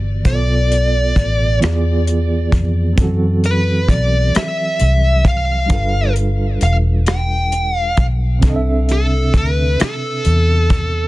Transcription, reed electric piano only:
0, 0, Header, 1, 2, 480
1, 0, Start_track
1, 0, Tempo, 909091
1, 133, Time_signature, 6, 3, 24, 8
1, 5849, End_track
2, 0, Start_track
2, 0, Title_t, "Reed electric piano"
2, 0, Program_c, 0, 4
2, 0, Control_c, 0, 64, 127
2, 0, Note_on_c, 0, 52, 70
2, 0, Note_on_c, 0, 59, 64
2, 0, Note_on_c, 0, 66, 64
2, 0, Note_on_c, 0, 67, 62
2, 0, Note_on_c, 0, 74, 76
2, 101, Note_off_c, 0, 52, 0
2, 108, Note_off_c, 0, 59, 0
2, 114, Note_off_c, 0, 66, 0
2, 122, Note_off_c, 0, 67, 0
2, 123, Note_on_c, 0, 47, 60
2, 127, Note_off_c, 0, 74, 0
2, 131, Note_on_c, 0, 59, 51
2, 135, Note_on_c, 0, 65, 51
2, 139, Control_c, 0, 64, 0
2, 143, Note_on_c, 0, 69, 51
2, 151, Note_on_c, 0, 72, 49
2, 176, Note_off_c, 0, 72, 0
2, 186, Note_on_c, 0, 74, 61
2, 230, Control_c, 0, 64, 127
2, 846, Note_off_c, 0, 59, 0
2, 847, Note_on_c, 0, 52, 72
2, 848, Note_off_c, 0, 47, 0
2, 852, Note_on_c, 0, 59, 64
2, 854, Note_off_c, 0, 65, 0
2, 858, Note_off_c, 0, 69, 0
2, 859, Note_on_c, 0, 65, 66
2, 860, Control_c, 0, 64, 0
2, 866, Note_on_c, 0, 68, 63
2, 868, Note_off_c, 0, 74, 0
2, 874, Note_on_c, 0, 74, 74
2, 954, Control_c, 0, 64, 127
2, 1548, Note_on_c, 0, 54, 66
2, 1561, Note_on_c, 0, 60, 64
2, 1570, Note_off_c, 0, 52, 0
2, 1572, Note_off_c, 0, 59, 0
2, 1575, Note_on_c, 0, 52, 63
2, 1576, Note_off_c, 0, 65, 0
2, 1579, Note_off_c, 0, 68, 0
2, 1580, Control_c, 0, 64, 0
2, 1583, Note_off_c, 0, 74, 0
2, 1590, Note_on_c, 0, 69, 63
2, 1601, Note_on_c, 0, 66, 72
2, 1679, Control_c, 0, 64, 127
2, 2979, Note_off_c, 0, 54, 0
2, 2985, Note_off_c, 0, 60, 0
2, 2989, Note_on_c, 0, 55, 58
2, 2993, Note_off_c, 0, 52, 0
2, 2999, Note_on_c, 0, 62, 54
2, 3000, Note_off_c, 0, 69, 0
2, 3006, Note_off_c, 0, 66, 0
2, 3012, Note_on_c, 0, 65, 53
2, 3020, Control_c, 0, 64, 0
2, 3022, Note_on_c, 0, 69, 50
2, 3033, Note_on_c, 0, 71, 51
2, 3042, Note_on_c, 0, 77, 65
2, 3118, Control_c, 0, 64, 127
2, 4420, Note_off_c, 0, 55, 0
2, 4425, Note_off_c, 0, 62, 0
2, 4430, Note_on_c, 0, 48, 67
2, 4431, Note_off_c, 0, 65, 0
2, 4436, Note_off_c, 0, 69, 0
2, 4442, Note_off_c, 0, 71, 0
2, 4442, Note_on_c, 0, 60, 61
2, 4446, Note_off_c, 0, 77, 0
2, 4456, Note_on_c, 0, 62, 63
2, 4460, Control_c, 0, 64, 0
2, 4470, Note_on_c, 0, 69, 62
2, 4485, Note_on_c, 0, 75, 61
2, 4503, Note_off_c, 0, 75, 0
2, 4519, Note_on_c, 0, 76, 77
2, 4548, Control_c, 0, 64, 127
2, 5849, Note_off_c, 0, 48, 0
2, 5849, Note_off_c, 0, 60, 0
2, 5849, Note_off_c, 0, 62, 0
2, 5849, Note_off_c, 0, 69, 0
2, 5849, Note_off_c, 0, 76, 0
2, 5849, End_track
0, 0, End_of_file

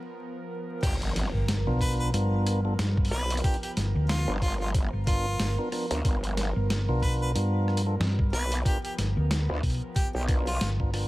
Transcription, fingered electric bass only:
0, 0, Header, 1, 2, 480
1, 0, Start_track
1, 0, Tempo, 652174
1, 612, Time_signature, 4, 2, 24, 8
1, 8154, End_track
2, 0, Start_track
2, 0, Title_t, "Fingered electric bass"
2, 0, Program_c, 0, 33
2, 987, Note_on_c, 0, 31, 95
2, 1206, Note_off_c, 0, 31, 0
2, 1229, Note_on_c, 0, 35, 96
2, 1555, Note_off_c, 0, 35, 0
2, 1572, Note_on_c, 0, 43, 98
2, 2035, Note_off_c, 0, 43, 0
2, 2052, Note_on_c, 0, 43, 97
2, 2276, Note_off_c, 0, 43, 0
2, 2773, Note_on_c, 0, 31, 94
2, 2888, Note_off_c, 0, 31, 0
2, 2910, Note_on_c, 0, 38, 97
2, 3128, Note_off_c, 0, 38, 0
2, 3630, Note_on_c, 0, 31, 97
2, 3955, Note_off_c, 0, 31, 0
2, 3972, Note_on_c, 0, 31, 101
2, 4088, Note_off_c, 0, 31, 0
2, 4829, Note_on_c, 0, 31, 97
2, 5047, Note_off_c, 0, 31, 0
2, 5068, Note_on_c, 0, 35, 99
2, 5394, Note_off_c, 0, 35, 0
2, 5412, Note_on_c, 0, 43, 98
2, 5876, Note_off_c, 0, 43, 0
2, 5887, Note_on_c, 0, 43, 99
2, 6113, Note_off_c, 0, 43, 0
2, 6610, Note_on_c, 0, 31, 92
2, 6727, Note_off_c, 0, 31, 0
2, 6748, Note_on_c, 0, 38, 99
2, 6967, Note_off_c, 0, 38, 0
2, 7088, Note_on_c, 0, 35, 97
2, 7206, Note_off_c, 0, 35, 0
2, 7809, Note_on_c, 0, 31, 97
2, 8154, Note_off_c, 0, 31, 0
2, 8154, End_track
0, 0, End_of_file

